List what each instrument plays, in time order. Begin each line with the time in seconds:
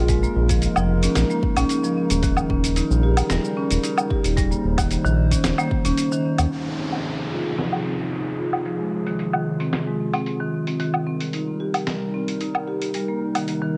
Already playing: analog synth bass A#1, ambient pad C#3 G#3 A#4
0.08 marimba G#3, ambient pad D#4, kick, open hi-hat, shaker
0.23 marimba A#3, shaker
0.36 analog synth bass A#1
0.49 marimba F3, kick, open hi-hat, shaker
0.62 open hi-hat, shaker
0.76 analog synth bass F1, marimba F3, low woodblock, shaker
1.03 marimba C#4, open hi-hat, shaker
1.15 analog synth bass A#1, snare, open hi-hat, shaker
1.30 marimba A#3, shaker
1.43 kick
1.57 analog synth bass A#1, marimba C#4, open hi-hat, low woodblock, shaker
1.69 open hi-hat, shaker
1.84 marimba F3, shaker
2.10 analog synth bass D#1, marimba C#4, open hi-hat, shaker
2.23 marimba D#3, ambient pad G3, kick, open hi-hat, shaker
2.37 low woodblock, shaker
2.50 analog synth bass D#1, marimba C#4, kick
2.64 open hi-hat, shaker
2.76 marimba D#4, open hi-hat, shaker
2.90 analog synth bass A#1, shaker
3.03 marimba G4
3.17 open hi-hat, low woodblock, shaker
3.30 analog synth bass D#1, marimba G3, snare, open hi-hat, shaker
3.44 shaker
3.57 marimba C#4
3.71 analog synth bass D#1, open hi-hat, shaker
3.83 marimba D#4, open hi-hat, shaker
3.98 low woodblock, shaker
4.10 marimba G4, kick
4.24 analog synth bass D#1, open hi-hat, shaker
4.37 marimba G3, ambient pad C5, kick, open hi-hat, shaker
4.51 marimba A#3, shaker
4.64 analog synth bass D#1
4.78 marimba D#3, kick, open hi-hat, low woodblock, shaker
4.91 open hi-hat, shaker
5.04 analog synth bass A#1, marimba D#3, shaker
5.31 marimba C#4, kick, open hi-hat, shaker
5.44 analog synth bass D#1, snare, open hi-hat, shaker
5.58 marimba A#3, low woodblock, shaker
5.71 kick
5.85 analog synth bass D#1, marimba C#4, open hi-hat, shaker
5.97 open hi-hat, shaker
6.12 marimba D#3, shaker
6.38 analog synth bass D#2, marimba C#4, open hi-hat, low woodblock, shaker
6.51 ambient pad C3 F3 D#4 G#4, marimba D#3, downlifter
6.78 marimba C4
6.92 open hi-hat, low woodblock
7.05 marimba D#4, open hi-hat
7.31 marimba F4
7.46 open hi-hat
7.58 marimba F3, snare, open hi-hat
7.72 low woodblock
7.85 marimba C4
7.99 open hi-hat
8.12 marimba D#4, open hi-hat
8.39 marimba F4
8.53 open hi-hat, low woodblock
8.65 marimba F3, ambient pad F4, open hi-hat
8.79 marimba G#3
9.07 marimba D#3, open hi-hat
9.19 open hi-hat
9.33 marimba D#3, low woodblock
9.60 marimba C4, open hi-hat
9.73 snare, open hi-hat
9.87 marimba G#3
10.13 marimba C4, open hi-hat, low woodblock
10.26 open hi-hat
10.40 marimba D#3
10.67 marimba C4, open hi-hat
10.80 marimba D#3, ambient pad G3 D#4 A#4, open hi-hat
10.94 low woodblock
11.07 marimba C4
11.21 open hi-hat
11.33 marimba D#4, open hi-hat
11.60 marimba G4
11.74 open hi-hat, low woodblock
11.87 marimba G3, snare, open hi-hat
12.14 marimba C4
12.28 open hi-hat
12.41 marimba D#4, open hi-hat
12.55 low woodblock
12.68 marimba G4
12.82 open hi-hat
12.94 marimba G3, open hi-hat
13.08 marimba A#3
13.35 marimba D#3, open hi-hat, low woodblock
13.48 open hi-hat
13.62 marimba D#3